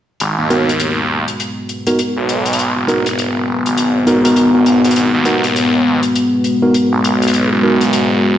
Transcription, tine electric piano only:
0.50 B3 D#4 F#4 A#4
1.87 B3 D#4 F#4 A#4
2.88 B3 D#4 F#4 A#4
4.07 B3 D#4 F#4 A#4
4.25 B3 D#4 F#4 A#4
4.54 B3 D#4 F#4 A#4
5.25 B3 D#4 F#4 A#4
6.62 B3 D#4 F#4 A#4
7.63 B3 D#4 F#4 A#4

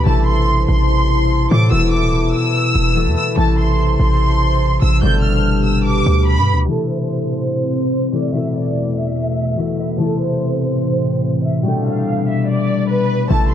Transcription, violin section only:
0.07 A5
0.27 C6
0.69 C6
1.51 D6
1.72 E6
1.93 D6
2.34 E6
3.17 E6
3.38 A5
3.58 C6
4.00 C6
4.82 E6
5.03 G6
5.24 F6
5.65 E6
5.86 D6
6.27 B5
6.69 A4
6.89 C5
7.31 C5
8.13 D5
8.34 E5
8.55 D5
8.96 E5
9.79 E5
10.00 A4
10.20 C5
10.62 C5
11.44 E5
11.65 G5
11.86 F5
12.27 E5
12.48 D5
12.89 B4
13.31 A5
13.51 C6

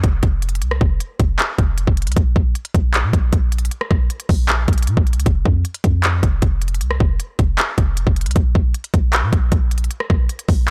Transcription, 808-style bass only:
0.04 F1
0.23 F1
0.62 C2
0.81 F1
1.20 F1
1.58 F1
1.87 F1
2.07 C2
2.17 A#1
2.36 A#1
2.74 A#1
3.04 A#2
3.13 A#1
3.33 A#1
3.91 A#1
4.29 A#1
4.68 A#1
4.87 A#2
4.97 A#1
5.16 C#2
5.26 F1
5.45 F2
5.84 F2
6.23 F1
6.42 F1
6.81 C2
7.00 F1
7.39 F1
7.78 F1
8.07 F1
8.26 C2
8.36 A#1
8.55 A#1
8.94 A#1
9.23 A#2
9.33 A#1
9.52 A#1
10.10 A#1
10.49 A#1

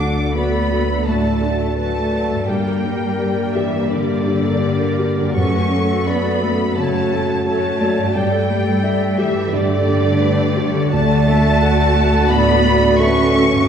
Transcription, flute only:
Already playing: F#5
0.36 D5
1.08 D5
1.78 D5
2.49 A#4
3.56 G4
3.92 G4
5.36 F#5
6.07 D5
6.76 C#5
7.45 C#5
8.15 D5
9.19 G4
9.53 G4
10.93 D5
12.31 D5
13.00 E5

